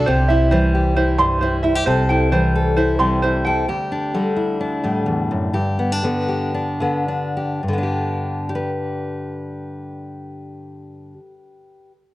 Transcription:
0.06 C2 C3 G4 C5
0.28 E4 E5
0.51 E3 G3 C5
0.75 G4
0.96 E4 C5
1.18 G2 G3 C6
1.41 E4 C5
1.63 E4 E5
1.76 G4
1.86 C2 C3 A4 C5
2.09 E4 G5
2.32 E3 G3 C5
2.56 A4
2.77 E4 C5
2.99 C3 G3 C6
3.22 E4 C5
3.45 A4 G5
3.68 D2 G4
3.92 D4
4.14 D3 G3
4.36 E4
4.61 D4
4.84 A2 G3
5.06 E2
5.31 F#2
5.53 G2 G4
5.79 B3
5.92 D4
6.04 D3 B3
6.29 G4
6.55 D4
6.81 D3 B3
7.08 D4
7.37 G4
7.63 G2
7.68 D3
7.73 B3
7.78 D4
7.83 G4
8.49 G4
8.55 B4

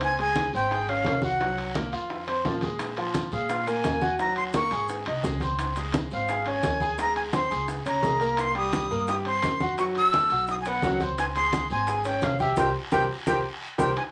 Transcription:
Already playing: C#2 C4 C5
0.01 G#5, high bongo, high conga, high timbale, long guiro
0.19 G#3 G#4 G#5, high bongo, high conga, high timbale
0.36 high bongo, high conga, high timbale, low timbale, short guiro
0.53 G#1 C4 C5 G5, high conga, short guiro
0.71 G#4 G#5, high bongo, high conga, high timbale, long guiro
0.88 C#4 C#5 F5, high bongo, high conga, high timbale
1.05 C2, high bongo, low bongo, high conga, high timbale, low timbale, short guiro
1.22 F#4 F#5, high bongo, high conga, short guiro
1.40 F#3 F#4, high bongo, high conga, high timbale, long guiro
1.57 high bongo, high conga, high timbale
1.75 A#3 A#4, high bongo, high conga, high timbale, low timbale, short guiro
1.92 F2 F4 F5, high conga, high timbale, short guiro
2.10 high bongo, high conga, long guiro
2.27 C4 C5, high bongo, high conga, high timbale
2.45 A#1 F3 F4, high bongo, low bongo, high conga, low timbale, short guiro
2.61 G#3 G#4, high bongo, high conga, high timbale, short guiro
2.79 high bongo, high conga, high timbale, long guiro, maracas
2.97 F3 F4, high bongo, high conga, high timbale
3.14 high bongo, high conga, high timbale, low timbale, short guiro, maracas
3.31 A#2 G#3 G#4 F5, high conga, short guiro, maracas
3.49 F4 F5, high bongo, high conga, high timbale, long guiro, maracas
3.67 A#3 A#4 G#5, high bongo, high conga, high timbale, maracas
3.84 D#2, high bongo, low bongo, high conga, high timbale, low timbale, short guiro, maracas
4.01 F#4 F#5, high bongo, high conga, short guiro, maracas
4.19 F#3 F#4 A#5, high bongo, high conga, high timbale, long guiro, maracas
4.36 C6, high bongo, high conga, high timbale
4.53 A#3 A#4 C#6, high bongo, high conga, high timbale, low timbale, short guiro, maracas
4.71 G#1 G#4 G#5, high conga, high timbale, short guiro, maracas
4.88 high bongo, high conga, long guiro, maracas
5.06 C2 D#4 D#5, high bongo, high conga, high timbale
5.23 C#2 G#3 G#4, high bongo, low bongo, high conga, low timbale, short guiro, maracas
5.40 C4 C5, high bongo, high conga, high timbale, short guiro, maracas
5.58 high bongo, high conga, high timbale, long guiro, maracas
5.76 G#3 G#4, high bongo, high conga, high timbale, maracas
5.92 high bongo, high conga, high timbale, low timbale, short guiro, maracas
6.11 G#1 C4 C5 F5, high conga, short guiro, maracas
6.28 G#4 G#5, high bongo, high conga, high timbale, long guiro, maracas
6.46 C#4 C#5 G#5, high bongo, high conga, high timbale
6.63 D2, high bongo, low bongo, high conga, high timbale, low timbale, short guiro, maracas
6.80 G#4 G#5, high bongo, high conga, short guiro, maracas
6.98 G#3 G#4 A#5, high bongo, high conga, high timbale, long guiro, maracas
7.16 G#5, high bongo, high conga, high timbale
7.33 C4 C5 C6, high bongo, high conga, high timbale, low timbale, short guiro, maracas
7.50 C#2 G#4 G#5, high conga, high timbale, short guiro, maracas
7.68 high bongo, high conga, long guiro, maracas
7.86 C#2 C#4 C#5 A#5, high bongo, high conga, high timbale, maracas
8.02 C2 G#3 G#4, high bongo, low bongo, high conga, low timbale, short guiro, maracas
8.20 A#3 A#4, high bongo, high timbale, short guiro, maracas
8.37 C6, high bongo, high conga, high timbale, long guiro, maracas
8.55 G3 G4 D#6, high bongo, high conga, high timbale
8.73 high bongo, high conga, high timbale, low timbale, short guiro, maracas
8.90 G2 A#3 A#4, high conga, short guiro, maracas
9.07 G4 G5 D#6, high bongo, high conga, high timbale, long guiro, maracas
9.25 C4 C5 C6, high bongo, high conga, high timbale
9.42 F#2, high bongo, low bongo, high conga, high timbale, low timbale, short guiro, maracas
9.60 F#4 F#5, high bongo, high conga, short guiro, maracas
9.78 F#3 F#4 C#6, high bongo, high conga, high timbale, long guiro, maracas
9.95 E6, high bongo, high conga, high timbale
10.12 A3 A4, high bongo, high conga, high timbale, low timbale, short guiro, maracas
10.30 B1 F#4 F#5, high conga, high timbale, short guiro, maracas
10.47 D#6, high bongo, high conga, long guiro, maracas
10.61 G#5, high conga, maracas
10.66 B3 B4 F#5, high bongo, high timbale
10.82 C#2 F#3 F#4, high bongo, low bongo, high conga, low timbale, short guiro, maracas
11.00 C4 C5, high bongo, high conga, high timbale, short guiro, maracas
11.18 G#5, high bongo, high conga, high timbale, long guiro, maracas
11.35 G#3 G#4 C6, high bongo, high conga, high timbale
11.53 high bongo, high conga, high timbale, low timbale, short guiro, maracas
11.70 G#1 C4 C5 G#5, high conga, short guiro, maracas
11.87 G#4 G#5, high bongo, high conga, high timbale, long guiro, maracas
12.04 C#4 C#5 G5, high bongo, high conga, high timbale, maracas
12.21 C2 F5, high bongo, low bongo, high conga, high timbale, low timbale, short guiro, maracas
12.39 G4 E5 G5, high bongo, high conga, short guiro, maracas
12.56 C2 G4 A#4 C5 G5, high bongo, high conga, high timbale, long guiro, maracas
12.92 C2 G4 A#4 C5 G5, high bongo, high conga, high timbale, long guiro, maracas
13.27 C2 G4 A#4 C5 G5, high bongo, high conga, high timbale, long guiro, maracas
13.78 C2 G4 A#4 C5 G5, high bongo, high conga, high timbale, long guiro, maracas
13.97 G#5, high bongo, high conga, high timbale, long guiro

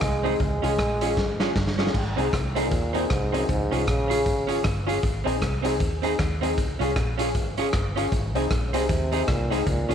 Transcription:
0.01 C2 G#3 D#4 G#4, muted hollow-body jazz guitar stroke, kick, cross-stick, closed hi-hat
0.23 C4 D#4 G#4, open hi-hat
0.40 C#2 G#3, kick, closed hi-hat
0.62 C2 C#4 F4 G#4, closed hi-hat
0.78 A#1 F4 G#4, kick, cross-stick, closed hi-hat
1.01 C#4 F4 G#4, closed hi-hat
1.16 G#1, muted hollow-body jazz guitar stroke, kick, snare
1.40 C#4 F4 G#4, snare
1.56 G1 F4 G#4, kick, snare
1.67 snare
1.78 C#4 F4 G#4, snare
1.87 snare
1.94 G#1, kick, crash
2.16 C2 C4 D#4 G#4, closed hi-hat
2.33 C2 D#4 G#4, kick, cross-stick, closed hi-hat
2.55 A#2 C4 D#4 G#4, closed hi-hat
2.71 D#2, muted hollow-body jazz guitar stroke, kick, closed hi-hat
2.93 C4 D#4 G#4, closed hi-hat
3.09 C2 G#2 D#4 G#4, muted hollow-body jazz guitar stroke, kick, cross-stick, closed hi-hat
3.32 F#2 C4 D#4 G#4, closed hi-hat
3.49 C#2 G#2, kick, closed hi-hat
3.71 C2 C#4 F4 G#4, closed hi-hat
3.87 A#1 C#3 F4 G#4, kick, cross-stick, closed hi-hat
4.08 C#4 F4 G#4, closed hi-hat
4.24 G#1, muted hollow-body jazz guitar stroke, kick, closed hi-hat
4.47 C#4 F4 G#4, closed hi-hat
4.63 G1 F4 G#4, muted hollow-body jazz guitar stroke, kick, cross-stick, closed hi-hat
4.87 C#4 F4 G#4, closed hi-hat
5.03 G#1, kick, closed hi-hat
5.24 A#1 C4 D#4 G#4, closed hi-hat
5.42 C2 D#4 G#4, kick, cross-stick, closed hi-hat
5.62 C4 D#4 G#4, closed hi-hat
5.79 D#2, muted hollow-body jazz guitar stroke, kick, closed hi-hat
6.02 C4 D#4 G#4, closed hi-hat
6.19 D#2 D#4 G#4, muted hollow-body jazz guitar stroke, kick, cross-stick, closed hi-hat
6.41 C4 D#4 G#4, closed hi-hat
6.58 C#2, kick, closed hi-hat
6.79 C2 C#4 F4 G#4, closed hi-hat
6.96 A#1 F4 G#4, kick, cross-stick, closed hi-hat
7.18 C#4 F4 G#4, closed hi-hat
7.35 G#1, muted hollow-body jazz guitar stroke, kick, closed hi-hat
7.57 C#4 F4 G#4, closed hi-hat
7.73 G1 F4 G#4, muted hollow-body jazz guitar stroke, kick, cross-stick, closed hi-hat
7.96 C#4 F4 G#4, closed hi-hat
8.12 G#1, kick, closed hi-hat
8.35 C2 C4 D#4 G#4, closed hi-hat
8.51 A#1 D#4 G#4, kick, cross-stick, closed hi-hat
8.67 C#3
8.73 C2 C3 C4 D#4 G#4, closed hi-hat
8.89 D#2, muted hollow-body jazz guitar stroke, kick, closed hi-hat
9.12 C4 D#4 G#4, closed hi-hat
9.27 C2 A#2 D#4 G#4, muted hollow-body jazz guitar stroke, kick, cross-stick, closed hi-hat
9.50 G#2 C4 D#4 G#4, closed hi-hat
9.67 C#2 A#2, kick, closed hi-hat
9.89 C2 C#4 F4 G#4, closed hi-hat

